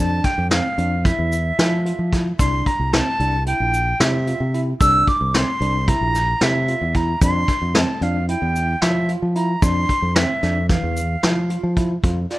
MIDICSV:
0, 0, Header, 1, 5, 480
1, 0, Start_track
1, 0, Key_signature, -1, "major"
1, 0, Tempo, 536193
1, 2143, Time_signature, 9, 3, 24, 8
1, 11090, End_track
2, 0, Start_track
2, 0, Title_t, "Flute"
2, 0, Program_c, 0, 73
2, 0, Note_on_c, 0, 81, 106
2, 220, Note_on_c, 0, 79, 93
2, 233, Note_off_c, 0, 81, 0
2, 450, Note_off_c, 0, 79, 0
2, 456, Note_on_c, 0, 77, 94
2, 943, Note_on_c, 0, 76, 82
2, 956, Note_off_c, 0, 77, 0
2, 1904, Note_off_c, 0, 76, 0
2, 2142, Note_on_c, 0, 84, 101
2, 2389, Note_on_c, 0, 82, 84
2, 2403, Note_off_c, 0, 84, 0
2, 2621, Note_on_c, 0, 81, 99
2, 2634, Note_off_c, 0, 82, 0
2, 3100, Note_off_c, 0, 81, 0
2, 3106, Note_on_c, 0, 79, 97
2, 3587, Note_on_c, 0, 76, 89
2, 3600, Note_off_c, 0, 79, 0
2, 4126, Note_off_c, 0, 76, 0
2, 4300, Note_on_c, 0, 88, 111
2, 4549, Note_on_c, 0, 86, 97
2, 4562, Note_off_c, 0, 88, 0
2, 4788, Note_on_c, 0, 84, 97
2, 4801, Note_off_c, 0, 86, 0
2, 5266, Note_on_c, 0, 82, 98
2, 5279, Note_off_c, 0, 84, 0
2, 5752, Note_on_c, 0, 76, 86
2, 5765, Note_off_c, 0, 82, 0
2, 6229, Note_on_c, 0, 82, 86
2, 6242, Note_off_c, 0, 76, 0
2, 6466, Note_off_c, 0, 82, 0
2, 6472, Note_on_c, 0, 84, 104
2, 6950, Note_on_c, 0, 81, 91
2, 6963, Note_off_c, 0, 84, 0
2, 7185, Note_on_c, 0, 77, 84
2, 7199, Note_off_c, 0, 81, 0
2, 7416, Note_off_c, 0, 77, 0
2, 7421, Note_on_c, 0, 79, 95
2, 7892, Note_on_c, 0, 76, 80
2, 7905, Note_off_c, 0, 79, 0
2, 8157, Note_off_c, 0, 76, 0
2, 8374, Note_on_c, 0, 82, 86
2, 8619, Note_on_c, 0, 84, 102
2, 8632, Note_off_c, 0, 82, 0
2, 9099, Note_on_c, 0, 76, 86
2, 9112, Note_off_c, 0, 84, 0
2, 9571, Note_off_c, 0, 76, 0
2, 9576, Note_on_c, 0, 77, 81
2, 10500, Note_off_c, 0, 77, 0
2, 11015, Note_on_c, 0, 74, 70
2, 11090, Note_off_c, 0, 74, 0
2, 11090, End_track
3, 0, Start_track
3, 0, Title_t, "Tine electric piano"
3, 0, Program_c, 1, 4
3, 0, Note_on_c, 1, 62, 82
3, 245, Note_off_c, 1, 62, 0
3, 457, Note_on_c, 1, 60, 75
3, 592, Note_off_c, 1, 60, 0
3, 699, Note_on_c, 1, 62, 65
3, 833, Note_off_c, 1, 62, 0
3, 938, Note_on_c, 1, 64, 83
3, 1206, Note_off_c, 1, 64, 0
3, 1422, Note_on_c, 1, 64, 80
3, 1556, Note_off_c, 1, 64, 0
3, 1662, Note_on_c, 1, 65, 61
3, 1796, Note_off_c, 1, 65, 0
3, 1907, Note_on_c, 1, 64, 70
3, 2039, Note_off_c, 1, 64, 0
3, 2146, Note_on_c, 1, 62, 77
3, 2412, Note_off_c, 1, 62, 0
3, 2626, Note_on_c, 1, 60, 75
3, 2759, Note_off_c, 1, 60, 0
3, 2869, Note_on_c, 1, 62, 64
3, 3001, Note_off_c, 1, 62, 0
3, 3106, Note_on_c, 1, 64, 69
3, 3372, Note_off_c, 1, 64, 0
3, 3587, Note_on_c, 1, 64, 78
3, 3719, Note_off_c, 1, 64, 0
3, 3827, Note_on_c, 1, 65, 64
3, 3959, Note_off_c, 1, 65, 0
3, 4066, Note_on_c, 1, 64, 78
3, 4199, Note_off_c, 1, 64, 0
3, 4310, Note_on_c, 1, 62, 85
3, 4575, Note_off_c, 1, 62, 0
3, 4787, Note_on_c, 1, 60, 76
3, 4919, Note_off_c, 1, 60, 0
3, 5026, Note_on_c, 1, 62, 71
3, 5159, Note_off_c, 1, 62, 0
3, 5267, Note_on_c, 1, 64, 80
3, 5533, Note_off_c, 1, 64, 0
3, 5744, Note_on_c, 1, 64, 82
3, 5877, Note_off_c, 1, 64, 0
3, 5985, Note_on_c, 1, 65, 62
3, 6118, Note_off_c, 1, 65, 0
3, 6223, Note_on_c, 1, 64, 84
3, 6357, Note_off_c, 1, 64, 0
3, 6462, Note_on_c, 1, 62, 85
3, 6729, Note_off_c, 1, 62, 0
3, 6941, Note_on_c, 1, 60, 81
3, 7074, Note_off_c, 1, 60, 0
3, 7182, Note_on_c, 1, 62, 77
3, 7315, Note_off_c, 1, 62, 0
3, 7421, Note_on_c, 1, 64, 80
3, 7687, Note_off_c, 1, 64, 0
3, 7901, Note_on_c, 1, 64, 75
3, 8034, Note_off_c, 1, 64, 0
3, 8139, Note_on_c, 1, 65, 67
3, 8272, Note_off_c, 1, 65, 0
3, 8380, Note_on_c, 1, 64, 86
3, 8513, Note_off_c, 1, 64, 0
3, 8615, Note_on_c, 1, 62, 83
3, 8883, Note_off_c, 1, 62, 0
3, 9099, Note_on_c, 1, 60, 83
3, 9232, Note_off_c, 1, 60, 0
3, 9340, Note_on_c, 1, 62, 71
3, 9472, Note_off_c, 1, 62, 0
3, 9577, Note_on_c, 1, 52, 83
3, 9844, Note_off_c, 1, 52, 0
3, 10057, Note_on_c, 1, 64, 73
3, 10190, Note_off_c, 1, 64, 0
3, 10296, Note_on_c, 1, 65, 68
3, 10430, Note_off_c, 1, 65, 0
3, 10534, Note_on_c, 1, 64, 77
3, 10668, Note_off_c, 1, 64, 0
3, 10776, Note_on_c, 1, 65, 69
3, 10909, Note_off_c, 1, 65, 0
3, 11018, Note_on_c, 1, 65, 61
3, 11090, Note_off_c, 1, 65, 0
3, 11090, End_track
4, 0, Start_track
4, 0, Title_t, "Fingered electric bass"
4, 0, Program_c, 2, 33
4, 0, Note_on_c, 2, 41, 82
4, 169, Note_off_c, 2, 41, 0
4, 338, Note_on_c, 2, 41, 78
4, 532, Note_off_c, 2, 41, 0
4, 697, Note_on_c, 2, 41, 77
4, 988, Note_off_c, 2, 41, 0
4, 1061, Note_on_c, 2, 40, 81
4, 1350, Note_off_c, 2, 40, 0
4, 1420, Note_on_c, 2, 53, 89
4, 1710, Note_off_c, 2, 53, 0
4, 1779, Note_on_c, 2, 53, 74
4, 2069, Note_off_c, 2, 53, 0
4, 2141, Note_on_c, 2, 36, 82
4, 2334, Note_off_c, 2, 36, 0
4, 2502, Note_on_c, 2, 36, 74
4, 2695, Note_off_c, 2, 36, 0
4, 2861, Note_on_c, 2, 36, 85
4, 3151, Note_off_c, 2, 36, 0
4, 3224, Note_on_c, 2, 34, 82
4, 3512, Note_off_c, 2, 34, 0
4, 3581, Note_on_c, 2, 48, 92
4, 3871, Note_off_c, 2, 48, 0
4, 3941, Note_on_c, 2, 48, 84
4, 4231, Note_off_c, 2, 48, 0
4, 4301, Note_on_c, 2, 36, 85
4, 4495, Note_off_c, 2, 36, 0
4, 4662, Note_on_c, 2, 36, 83
4, 4855, Note_off_c, 2, 36, 0
4, 5019, Note_on_c, 2, 36, 86
4, 5309, Note_off_c, 2, 36, 0
4, 5381, Note_on_c, 2, 34, 83
4, 5670, Note_off_c, 2, 34, 0
4, 5739, Note_on_c, 2, 48, 92
4, 6029, Note_off_c, 2, 48, 0
4, 6100, Note_on_c, 2, 40, 76
4, 6389, Note_off_c, 2, 40, 0
4, 6457, Note_on_c, 2, 41, 97
4, 6652, Note_off_c, 2, 41, 0
4, 6818, Note_on_c, 2, 41, 81
4, 7012, Note_off_c, 2, 41, 0
4, 7173, Note_on_c, 2, 41, 84
4, 7464, Note_off_c, 2, 41, 0
4, 7537, Note_on_c, 2, 40, 82
4, 7826, Note_off_c, 2, 40, 0
4, 7895, Note_on_c, 2, 53, 95
4, 8185, Note_off_c, 2, 53, 0
4, 8257, Note_on_c, 2, 53, 82
4, 8546, Note_off_c, 2, 53, 0
4, 8613, Note_on_c, 2, 41, 89
4, 8808, Note_off_c, 2, 41, 0
4, 8973, Note_on_c, 2, 41, 86
4, 9167, Note_off_c, 2, 41, 0
4, 9336, Note_on_c, 2, 41, 87
4, 9625, Note_off_c, 2, 41, 0
4, 9696, Note_on_c, 2, 40, 78
4, 9985, Note_off_c, 2, 40, 0
4, 10055, Note_on_c, 2, 53, 82
4, 10344, Note_off_c, 2, 53, 0
4, 10415, Note_on_c, 2, 53, 77
4, 10704, Note_off_c, 2, 53, 0
4, 10771, Note_on_c, 2, 41, 81
4, 10965, Note_off_c, 2, 41, 0
4, 11090, End_track
5, 0, Start_track
5, 0, Title_t, "Drums"
5, 214, Note_on_c, 9, 38, 29
5, 214, Note_on_c, 9, 42, 60
5, 217, Note_on_c, 9, 36, 78
5, 304, Note_off_c, 9, 38, 0
5, 304, Note_off_c, 9, 42, 0
5, 306, Note_off_c, 9, 36, 0
5, 455, Note_on_c, 9, 38, 103
5, 455, Note_on_c, 9, 42, 77
5, 466, Note_on_c, 9, 82, 20
5, 545, Note_off_c, 9, 38, 0
5, 545, Note_off_c, 9, 42, 0
5, 556, Note_off_c, 9, 82, 0
5, 698, Note_on_c, 9, 42, 53
5, 788, Note_off_c, 9, 42, 0
5, 940, Note_on_c, 9, 36, 94
5, 940, Note_on_c, 9, 38, 29
5, 940, Note_on_c, 9, 42, 72
5, 1030, Note_off_c, 9, 36, 0
5, 1030, Note_off_c, 9, 38, 0
5, 1030, Note_off_c, 9, 42, 0
5, 1181, Note_on_c, 9, 42, 56
5, 1184, Note_on_c, 9, 82, 43
5, 1271, Note_off_c, 9, 42, 0
5, 1273, Note_off_c, 9, 82, 0
5, 1421, Note_on_c, 9, 38, 93
5, 1421, Note_on_c, 9, 42, 73
5, 1427, Note_on_c, 9, 82, 19
5, 1511, Note_off_c, 9, 38, 0
5, 1511, Note_off_c, 9, 42, 0
5, 1516, Note_off_c, 9, 82, 0
5, 1664, Note_on_c, 9, 42, 60
5, 1754, Note_off_c, 9, 42, 0
5, 1903, Note_on_c, 9, 36, 75
5, 1904, Note_on_c, 9, 38, 30
5, 1904, Note_on_c, 9, 42, 64
5, 1992, Note_off_c, 9, 36, 0
5, 1994, Note_off_c, 9, 38, 0
5, 1994, Note_off_c, 9, 42, 0
5, 2143, Note_on_c, 9, 36, 95
5, 2143, Note_on_c, 9, 42, 82
5, 2146, Note_on_c, 9, 82, 57
5, 2232, Note_off_c, 9, 36, 0
5, 2233, Note_off_c, 9, 42, 0
5, 2236, Note_off_c, 9, 82, 0
5, 2384, Note_on_c, 9, 36, 68
5, 2386, Note_on_c, 9, 42, 58
5, 2473, Note_off_c, 9, 36, 0
5, 2476, Note_off_c, 9, 42, 0
5, 2624, Note_on_c, 9, 38, 100
5, 2624, Note_on_c, 9, 42, 74
5, 2714, Note_off_c, 9, 38, 0
5, 2714, Note_off_c, 9, 42, 0
5, 2864, Note_on_c, 9, 42, 57
5, 2953, Note_off_c, 9, 42, 0
5, 3101, Note_on_c, 9, 42, 74
5, 3191, Note_off_c, 9, 42, 0
5, 3344, Note_on_c, 9, 42, 49
5, 3347, Note_on_c, 9, 82, 46
5, 3434, Note_off_c, 9, 42, 0
5, 3437, Note_off_c, 9, 82, 0
5, 3582, Note_on_c, 9, 38, 97
5, 3582, Note_on_c, 9, 42, 72
5, 3590, Note_on_c, 9, 82, 18
5, 3672, Note_off_c, 9, 38, 0
5, 3672, Note_off_c, 9, 42, 0
5, 3680, Note_off_c, 9, 82, 0
5, 3823, Note_on_c, 9, 42, 53
5, 3913, Note_off_c, 9, 42, 0
5, 4064, Note_on_c, 9, 42, 57
5, 4154, Note_off_c, 9, 42, 0
5, 4302, Note_on_c, 9, 42, 67
5, 4303, Note_on_c, 9, 36, 97
5, 4307, Note_on_c, 9, 82, 59
5, 4391, Note_off_c, 9, 42, 0
5, 4392, Note_off_c, 9, 36, 0
5, 4396, Note_off_c, 9, 82, 0
5, 4543, Note_on_c, 9, 36, 79
5, 4544, Note_on_c, 9, 42, 55
5, 4632, Note_off_c, 9, 36, 0
5, 4633, Note_off_c, 9, 42, 0
5, 4783, Note_on_c, 9, 38, 112
5, 4783, Note_on_c, 9, 42, 80
5, 4872, Note_off_c, 9, 38, 0
5, 4872, Note_off_c, 9, 42, 0
5, 5024, Note_on_c, 9, 42, 61
5, 5114, Note_off_c, 9, 42, 0
5, 5263, Note_on_c, 9, 36, 96
5, 5263, Note_on_c, 9, 42, 69
5, 5352, Note_off_c, 9, 36, 0
5, 5353, Note_off_c, 9, 42, 0
5, 5502, Note_on_c, 9, 38, 32
5, 5502, Note_on_c, 9, 42, 56
5, 5504, Note_on_c, 9, 82, 45
5, 5591, Note_off_c, 9, 38, 0
5, 5591, Note_off_c, 9, 42, 0
5, 5594, Note_off_c, 9, 82, 0
5, 5739, Note_on_c, 9, 38, 93
5, 5739, Note_on_c, 9, 42, 76
5, 5745, Note_on_c, 9, 82, 18
5, 5828, Note_off_c, 9, 38, 0
5, 5828, Note_off_c, 9, 42, 0
5, 5835, Note_off_c, 9, 82, 0
5, 5979, Note_on_c, 9, 42, 60
5, 6069, Note_off_c, 9, 42, 0
5, 6217, Note_on_c, 9, 42, 60
5, 6219, Note_on_c, 9, 36, 75
5, 6307, Note_off_c, 9, 42, 0
5, 6309, Note_off_c, 9, 36, 0
5, 6458, Note_on_c, 9, 42, 78
5, 6459, Note_on_c, 9, 36, 107
5, 6462, Note_on_c, 9, 82, 50
5, 6547, Note_off_c, 9, 42, 0
5, 6548, Note_off_c, 9, 36, 0
5, 6551, Note_off_c, 9, 82, 0
5, 6698, Note_on_c, 9, 36, 75
5, 6698, Note_on_c, 9, 38, 30
5, 6698, Note_on_c, 9, 42, 61
5, 6787, Note_off_c, 9, 36, 0
5, 6787, Note_off_c, 9, 38, 0
5, 6787, Note_off_c, 9, 42, 0
5, 6935, Note_on_c, 9, 38, 119
5, 6935, Note_on_c, 9, 42, 86
5, 7024, Note_off_c, 9, 38, 0
5, 7024, Note_off_c, 9, 42, 0
5, 7175, Note_on_c, 9, 42, 57
5, 7265, Note_off_c, 9, 42, 0
5, 7416, Note_on_c, 9, 42, 67
5, 7506, Note_off_c, 9, 42, 0
5, 7657, Note_on_c, 9, 42, 57
5, 7662, Note_on_c, 9, 82, 40
5, 7747, Note_off_c, 9, 42, 0
5, 7752, Note_off_c, 9, 82, 0
5, 7893, Note_on_c, 9, 38, 104
5, 7893, Note_on_c, 9, 42, 73
5, 7901, Note_on_c, 9, 82, 17
5, 7982, Note_off_c, 9, 38, 0
5, 7982, Note_off_c, 9, 42, 0
5, 7990, Note_off_c, 9, 82, 0
5, 8133, Note_on_c, 9, 42, 55
5, 8223, Note_off_c, 9, 42, 0
5, 8374, Note_on_c, 9, 42, 61
5, 8463, Note_off_c, 9, 42, 0
5, 8613, Note_on_c, 9, 42, 72
5, 8615, Note_on_c, 9, 36, 98
5, 8617, Note_on_c, 9, 82, 57
5, 8702, Note_off_c, 9, 42, 0
5, 8704, Note_off_c, 9, 36, 0
5, 8707, Note_off_c, 9, 82, 0
5, 8855, Note_on_c, 9, 36, 71
5, 8855, Note_on_c, 9, 42, 60
5, 8944, Note_off_c, 9, 36, 0
5, 8945, Note_off_c, 9, 42, 0
5, 9092, Note_on_c, 9, 38, 113
5, 9092, Note_on_c, 9, 42, 83
5, 9181, Note_off_c, 9, 38, 0
5, 9181, Note_off_c, 9, 42, 0
5, 9334, Note_on_c, 9, 38, 30
5, 9334, Note_on_c, 9, 42, 54
5, 9423, Note_off_c, 9, 38, 0
5, 9423, Note_off_c, 9, 42, 0
5, 9572, Note_on_c, 9, 38, 30
5, 9572, Note_on_c, 9, 42, 71
5, 9574, Note_on_c, 9, 36, 94
5, 9661, Note_off_c, 9, 38, 0
5, 9661, Note_off_c, 9, 42, 0
5, 9663, Note_off_c, 9, 36, 0
5, 9814, Note_on_c, 9, 42, 60
5, 9818, Note_on_c, 9, 82, 46
5, 9903, Note_off_c, 9, 42, 0
5, 9907, Note_off_c, 9, 82, 0
5, 10053, Note_on_c, 9, 38, 97
5, 10053, Note_on_c, 9, 42, 72
5, 10143, Note_off_c, 9, 38, 0
5, 10143, Note_off_c, 9, 42, 0
5, 10293, Note_on_c, 9, 42, 66
5, 10383, Note_off_c, 9, 42, 0
5, 10534, Note_on_c, 9, 36, 73
5, 10534, Note_on_c, 9, 42, 68
5, 10623, Note_off_c, 9, 42, 0
5, 10624, Note_off_c, 9, 36, 0
5, 10775, Note_on_c, 9, 36, 87
5, 10775, Note_on_c, 9, 42, 67
5, 10864, Note_off_c, 9, 36, 0
5, 10864, Note_off_c, 9, 42, 0
5, 11013, Note_on_c, 9, 38, 29
5, 11013, Note_on_c, 9, 42, 54
5, 11090, Note_off_c, 9, 38, 0
5, 11090, Note_off_c, 9, 42, 0
5, 11090, End_track
0, 0, End_of_file